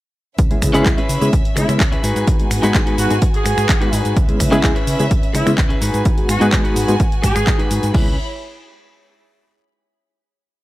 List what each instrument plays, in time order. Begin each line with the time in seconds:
0.38 fingered electric bass C#2, violin section C#4 B4 E5, kick, closed hi-hat, cabasa
0.50 reed electric piano G#3 B3 C#4 E4 G#4, closed hi-hat
0.62 fingered electric bass C#3, finger snap, kick, open hi-hat, cabasa
0.73 fingered electric bass C#3, reed electric piano G#3 B3 C#4 E4 G#4, clean electric guitar C#4 E4 G#4 B4, closed hi-hat, cabasa
0.86 fingered electric bass C#2, reed electric piano G#3 B3 C#4 E4 G#4, kick, clap, closed hi-hat, cabasa
0.97 clean electric guitar C#4 E4 G#4 B4, closed hi-hat
1.09 fingered electric bass C#3, open hi-hat, cabasa
1.21 fingered electric bass C#3, reed electric piano G#3 B3 C#4 E4 G#4, closed hi-hat, cabasa
1.33 fingered electric bass C#2, kick, closed hi-hat, cabasa
1.45 closed hi-hat
1.56 fingered electric bass C#3, reed electric piano G#3 B3 C#4 E4 G#4, horn section E4, finger snap, muted clean electric guitar stroke, open hi-hat, cabasa
1.68 fingered electric bass C#3, reed electric piano G#3 B3 C#4 E4 G#4, finger snap, muted clean electric guitar stroke, closed hi-hat, cabasa
1.79 fingered electric bass C#2, muted clean electric guitar stroke, kick, clap, closed hi-hat, cabasa
1.92 clean electric guitar C#4 E4 G#4 B4, closed hi-hat
2.03 fingered electric bass G#2, clean electric guitar D#4 F#4 G#4 B4, violin section F#4 G#5, open hi-hat, cabasa
2.16 fingered electric bass G#2, closed hi-hat, cabasa
2.27 fingered electric bass G#1, kick, closed hi-hat, cabasa
2.39 reed electric piano G#3 B3 D#4 F#4 G#4, closed hi-hat
2.51 fingered electric bass G#2, finger snap, open hi-hat, cabasa
2.62 fingered electric bass G#2, reed electric piano G#3 B3 D#4 F#4 G#4, clean electric guitar D#4 F#4 G#4 B4, closed hi-hat, cabasa
2.74 fingered electric bass G#1, reed electric piano G#3 B3 D#4 F#4 G#4, kick, clap, closed hi-hat, cabasa
2.86 clean electric guitar D#4 F#4 G#4 B4, closed hi-hat
2.98 fingered electric bass G#2, horn section F#4, open hi-hat, cabasa
3.10 fingered electric bass G#2, reed electric piano G#3 B3 D#4 F#4 G#4, closed hi-hat, cabasa
3.22 fingered electric bass G#1, kick, closed hi-hat, cabasa
3.34 horn section G#4, closed hi-hat
3.44 fingered electric bass G#2, finger snap, muted clean electric guitar stroke, open hi-hat, cabasa
3.57 fingered electric bass G#2, finger snap, muted clean electric guitar stroke, closed hi-hat, cabasa
3.68 fingered electric bass G#1, muted clean electric guitar stroke, kick, clap, closed hi-hat, cabasa
3.80 reed electric piano G#3 B3 D#4 F#4 G#4, clean electric guitar D#4 F#4 G#4 B4, closed hi-hat
3.93 fingered electric bass G#2, open hi-hat, cabasa
4.05 fingered electric bass G#2, closed hi-hat, cabasa
4.16 fingered electric bass C#2, violin section C#4 E5, kick, closed hi-hat, cabasa
4.28 reed electric piano G#3 B3 C#4 E4 G#4, closed hi-hat
4.40 fingered electric bass C#3, finger snap, kick, open hi-hat, cabasa
4.51 fingered electric bass C#3, reed electric piano G#3 B3 C#4 E4 G#4, clean electric guitar C#4 E4 G#4 B4, closed hi-hat, cabasa
4.63 fingered electric bass C#2, reed electric piano G#3 B3 C#4 E4 G#4, kick, clap, closed hi-hat, cabasa
4.75 clean electric guitar C#4 E4 G#4 B4, closed hi-hat
4.87 fingered electric bass C#3, open hi-hat, cabasa
4.99 fingered electric bass C#3, reed electric piano G#3 B3 C#4 E4 G#4, closed hi-hat, cabasa
5.11 fingered electric bass C#2, kick, closed hi-hat, cabasa
5.23 closed hi-hat
5.33 fingered electric bass C#3, reed electric piano G#3 B3 C#4 E4 G#4, horn section E4, finger snap, muted clean electric guitar stroke, open hi-hat, cabasa
5.46 fingered electric bass C#3, reed electric piano G#3 B3 C#4 E4 G#4, finger snap, muted clean electric guitar stroke, closed hi-hat, cabasa
5.57 fingered electric bass C#2, muted clean electric guitar stroke, kick, clap, closed hi-hat, cabasa
5.69 clean electric guitar C#4 E4 G#4 B4, closed hi-hat
5.81 fingered electric bass G#2, clean electric guitar D#4 F#4 G#4 B4, violin section F#4 G#5, open hi-hat, cabasa
5.94 fingered electric bass G#2, closed hi-hat, cabasa
6.05 fingered electric bass G#1, kick, closed hi-hat, cabasa
6.17 reed electric piano G#3 B3 D#4 F#4 G#4, closed hi-hat
6.29 fingered electric bass G#2, horn section F#4, finger snap, open hi-hat, cabasa
6.40 fingered electric bass G#2, reed electric piano G#3 B3 D#4 F#4 G#4, clean electric guitar D#4 F#4 G#4 B4, closed hi-hat, cabasa
6.52 fingered electric bass G#1, reed electric piano G#3 B3 D#4 F#4 G#4, kick, clap, closed hi-hat, cabasa
6.64 clean electric guitar D#4 F#4 G#4 B4, closed hi-hat
6.76 fingered electric bass G#2, open hi-hat, cabasa
6.88 fingered electric bass G#2, reed electric piano G#3 B3 D#4 F#4 G#4, closed hi-hat, cabasa
7.00 fingered electric bass G#1, kick, closed hi-hat, cabasa
7.12 closed hi-hat
7.22 fingered electric bass G#2, horn section G#4, finger snap, muted clean electric guitar stroke, kick, open hi-hat, cabasa
7.35 fingered electric bass G#2, finger snap, muted clean electric guitar stroke, closed hi-hat, cabasa
7.46 fingered electric bass G#1, muted clean electric guitar stroke, kick, clap, closed hi-hat, cabasa
7.58 reed electric piano G#3 B3 D#4 F#4 G#4, clean electric guitar D#4 F#4 G#4 B4, closed hi-hat
7.71 fingered electric bass G#2, open hi-hat, cabasa
7.83 fingered electric bass G#2, closed hi-hat, cabasa
7.93 fingered electric bass C#2, reed electric piano G#3 B3 C#4 E4 G#4, clean electric guitar C#4 E4 B4, violin section E4 C#5 B5, kick, crash